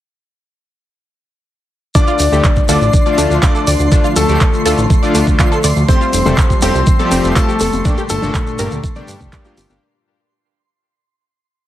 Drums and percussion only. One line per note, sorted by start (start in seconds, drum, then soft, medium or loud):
1.95 kick loud
1.95 shekere medium
2.07 shekere soft
2.19 open hi-hat loud
2.19 shekere medium
2.32 shekere soft
2.44 kick loud
2.44 clap loud
2.44 shekere soft
2.56 kick medium
2.56 shekere soft
2.69 open hi-hat loud
2.69 shekere loud
2.82 shekere soft
2.93 kick loud
2.93 shekere medium
3.06 shekere soft
3.18 open hi-hat loud
3.18 shekere medium
3.31 shekere soft
3.43 kick loud
3.43 clap loud
3.43 shekere medium
3.55 shekere soft
3.67 open hi-hat loud
3.67 shekere medium
3.79 shekere soft
3.92 kick loud
3.92 shekere medium
4.04 shekere soft
4.16 open hi-hat loud
4.16 shekere loud
4.28 shekere soft
4.40 kick loud
4.40 clap loud
4.40 shekere medium
4.54 shekere soft
4.66 open hi-hat loud
4.66 shekere medium
4.78 shekere soft
4.90 kick loud
4.90 shekere medium
5.03 shekere soft
5.15 open hi-hat loud
5.15 shekere loud
5.27 kick medium
5.27 shekere soft
5.39 kick loud
5.39 clap loud
5.39 shekere medium
5.52 shekere soft
5.64 open hi-hat loud
5.64 shekere loud
5.76 shekere soft
5.89 kick loud
5.89 shekere medium
6.01 shekere soft
6.13 open hi-hat loud
6.13 shekere loud
6.26 mid tom loud
6.26 shekere soft
6.38 kick loud
6.38 clap loud
6.38 shekere medium
6.50 kick medium
6.50 shekere soft
6.62 open hi-hat loud
6.62 shekere loud
6.75 shekere soft
6.87 kick loud
6.87 shekere medium
6.99 high conga medium
6.99 shekere soft
7.12 open hi-hat loud
7.12 shekere medium
7.24 shekere soft
7.36 kick loud
7.36 clap loud
7.36 shekere medium
7.49 shekere soft
7.60 open hi-hat loud
7.60 high conga medium
7.60 shekere loud
7.73 high conga loud
7.73 shekere soft
7.85 kick loud
7.85 shekere medium
7.98 shekere soft
8.10 open hi-hat loud
8.10 shekere loud
8.22 mid tom loud
8.22 shekere soft
8.34 kick loud
8.34 clap loud
8.34 shekere medium
8.47 shekere soft
8.59 open hi-hat loud
8.59 shekere medium
8.71 shekere soft
8.84 kick loud
8.84 shekere medium
8.96 mid tom medium
8.96 high conga medium
8.96 shekere soft
9.08 open hi-hat loud
9.08 shekere loud
9.20 kick medium
9.20 mid tom medium
9.20 shekere soft
9.33 kick loud
9.33 clap loud
9.33 shekere medium
9.45 shekere soft
9.57 open hi-hat loud
9.57 high conga medium
9.57 shekere loud
9.70 high conga medium
9.70 shekere soft